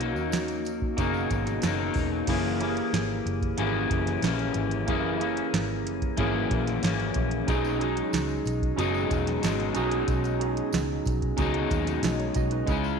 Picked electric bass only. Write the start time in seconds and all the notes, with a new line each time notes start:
Already playing: B1
0.17 D#2
0.98 F#1
1.31 G#1
1.63 F#1
1.95 E1
2.28 F#1
2.93 G#1
3.26 F#1
3.58 G#1
3.91 F#1
4.23 A#1
4.55 G#1
4.88 F#1
5.53 G#1
5.86 F#1
6.18 G#1
6.51 A#1
6.83 G#1
7.16 A#1
7.48 B1
8.13 C#2
8.46 B1
8.78 F#1
9.11 E1
9.44 G#1
9.76 B1
10.08 B1
10.73 C#2
11.06 B1
11.38 C#2
11.71 D#2
12.03 B1
12.36 B1
12.68 C#2